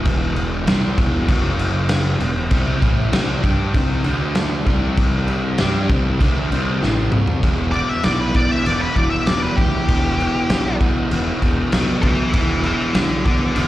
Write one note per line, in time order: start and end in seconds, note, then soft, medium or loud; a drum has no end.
0.00 0.64 E1 loud
0.00 0.67 E2 loud
0.00 0.66 B2 loud
0.00 0.67 E3 loud
0.05 kick loud
0.05 crash medium
0.36 crash medium
0.66 0.95 C2 medium
0.66 0.97 C3 medium
0.66 0.98 G3 loud
0.66 0.98 C4 loud
0.66 snare loud
0.66 crash medium
0.98 1.27 E1 loud
0.98 1.29 E2 loud
0.98 1.30 B2 medium
0.98 1.30 E3 loud
0.98 kick loud
0.98 crash medium
1.28 2.17 F#1 loud
1.28 2.20 F#2 loud
1.28 2.21 C#3 loud
1.28 2.21 F#3 loud
1.28 kick loud
1.28 crash medium
1.59 crash medium
1.89 snare loud
1.89 crash medium
2.20 2.49 E1 medium
2.20 2.46 E2 medium
2.20 2.46 B2 medium
2.20 crash medium
2.51 2.80 C2 loud
2.51 2.81 C3 loud
2.51 2.82 G3 loud
2.51 2.82 C4 loud
2.51 kick loud
2.51 crash medium
2.82 3.11 A1 loud
2.82 3.12 A2 loud
2.82 3.12 E3 medium
2.82 3.13 A3 loud
2.82 kick loud
2.82 crash medium
3.12 3.42 C2 medium
3.12 3.43 C3 loud
3.12 3.42 G3 loud
3.12 3.43 C4 loud
3.12 snare loud
3.12 crash medium
3.43 3.73 G2 loud
3.43 3.73 G3 loud
3.43 3.74 D4 loud
3.43 3.74 G4 loud
3.43 kick loud
3.43 crash medium
3.74 4.03 C2 loud
3.74 4.04 C3 medium
3.74 4.04 G3 loud
3.74 4.05 C4 loud
3.74 kick loud
3.74 crash medium
4.04 4.63 D2 loud
4.04 4.66 D3 medium
4.04 4.66 A3 loud
4.04 4.66 D4 loud
4.04 crash medium
4.35 snare loud
4.35 crash medium
4.66 5.55 C2 loud
4.66 5.58 C3 medium
4.66 5.58 G3 medium
4.66 5.58 C4 medium
4.66 kick loud
4.66 crash medium
4.97 kick loud
4.97 crash medium
5.28 crash medium
5.58 5.88 G2 loud
5.58 5.89 G3 loud
5.58 5.89 D4 loud
5.58 5.89 G4 loud
5.58 snare loud
5.58 crash medium
5.89 6.18 C2 loud
5.89 6.20 C3 loud
5.89 6.20 G3 loud
5.89 6.20 C4 loud
5.89 kick loud
5.89 crash medium
6.20 6.49 D2 medium
6.20 6.50 D3 loud
6.20 6.51 A3 loud
6.20 6.51 D4 loud
6.20 kick loud
6.20 crash medium
6.52 6.80 C2 loud
6.52 6.81 C3 medium
6.52 6.82 G3 medium
6.52 6.82 C4 loud
6.52 crash medium
6.82 7.11 A1 medium
6.82 7.12 A2 loud
6.82 7.12 E3 loud
6.82 7.13 A3 loud
6.82 snare medium
7.12 7.41 C2 medium
7.12 7.42 C3 medium
7.12 7.43 G3 loud
7.12 7.43 C4 medium
7.12 mid tom loud
7.27 floor tom loud
7.42 7.81 E1 medium
7.42 7.74 E2 medium
7.42 7.74 B2 loud
7.42 7.75 E3 loud
7.42 kick loud
7.42 crash medium
7.72 8.03 E2 medium
7.72 8.04 B2 medium
7.72 8.05 E3 medium
7.72 7.88 D5 medium
7.72 crash medium
7.89 8.04 E5 medium
8.03 8.43 B1 medium
8.03 8.34 E2 loud
8.03 8.34 B2 loud
8.03 8.35 E3 loud
8.03 8.20 D5 medium
8.03 snare loud
8.03 crash medium
8.20 8.36 B4 loud
8.34 8.65 E2 loud
8.34 8.66 B2 medium
8.34 8.67 E3 medium
8.34 8.51 D5 medium
8.34 kick medium
8.34 crash medium
8.51 8.66 E5 medium
8.66 8.85 E1 medium
8.66 8.96 E2 medium
8.66 8.96 B2 medium
8.66 8.97 E3 loud
8.66 8.81 D5 medium
8.66 crash medium
8.81 8.96 B4 medium
8.96 9.15 E1 medium
8.96 9.27 E2 medium
8.96 9.28 B2 loud
8.96 9.28 E3 loud
8.96 9.10 D5 medium
8.96 kick medium
8.96 crash medium
9.10 9.26 E5 medium
9.26 9.47 E1 medium
9.26 9.57 E2 medium
9.26 9.58 B2 loud
9.26 9.59 E3 loud
9.26 9.42 D5 medium
9.26 snare loud
9.26 crash medium
9.42 9.57 B4 medium
9.56 9.77 D2 medium
9.56 9.88 E2 medium
9.56 9.89 B2 medium
9.56 9.89 E3 medium
9.56 10.76 G4 medium
9.56 kick medium
9.56 crash medium
9.89 10.26 E1 loud
9.89 10.18 E2 loud
9.89 10.19 B2 loud
9.89 10.20 E3 loud
9.89 kick loud
9.89 crash medium
10.20 10.49 E2 medium
10.20 10.50 B2 medium
10.20 10.50 E3 medium
10.20 crash medium
10.49 10.87 B1 loud
10.49 10.80 E2 medium
10.49 10.82 B2 loud
10.49 10.82 E3 loud
10.49 snare loud
10.49 crash medium
10.81 11.11 E2 medium
10.81 11.11 B2 medium
10.81 11.12 E3 loud
10.81 kick medium
10.81 crash medium
11.11 11.30 E1 medium
11.11 11.41 E2 medium
11.11 11.41 B2 medium
11.11 11.43 E3 medium
11.11 crash medium
11.42 11.61 E1 loud
11.42 11.71 E2 medium
11.42 11.71 B2 loud
11.42 11.72 E3 loud
11.42 kick medium
11.42 crash medium
11.72 11.92 B1 medium
11.72 12.02 B2 loud
11.72 12.03 F#3 loud
11.72 12.04 B3 loud
11.72 snare loud
11.72 crash medium
12.02 12.22 D2 medium
12.02 12.32 B2 medium
12.02 12.33 F#3 medium
12.02 13.68 B3 medium
12.02 12.33 B4 medium
12.02 12.33 E5 loud
12.02 kick medium
12.02 crash medium
12.33 12.72 E1 medium
12.33 12.65 E2 loud
12.33 12.65 B2 loud
12.33 12.66 E3 loud
12.33 12.62 B4 medium
12.33 12.64 E5 medium
12.33 kick loud
12.33 crash medium
12.64 12.94 E2 medium
12.64 12.95 B2 medium
12.64 12.95 E3 loud
12.64 12.93 B4 medium
12.64 12.95 E5 medium
12.64 crash medium
12.94 13.32 B1 medium
12.94 13.26 E2 loud
12.94 13.26 B2 loud
12.94 13.26 E3 loud
12.94 13.24 A4 medium
12.94 13.25 D5 medium
12.94 snare loud
12.94 crash medium
13.25 13.56 E2 medium
13.25 13.57 B2 medium
13.25 13.57 E3 loud
13.25 13.54 A4 medium
13.25 13.54 D5 loud
13.25 kick medium
13.25 crash medium
13.55 13.68 E1 medium
13.55 13.68 E2 medium
13.55 13.68 B2 medium
13.55 13.68 E3 medium
13.55 13.68 A4 medium
13.55 13.68 D5 medium
13.55 crash medium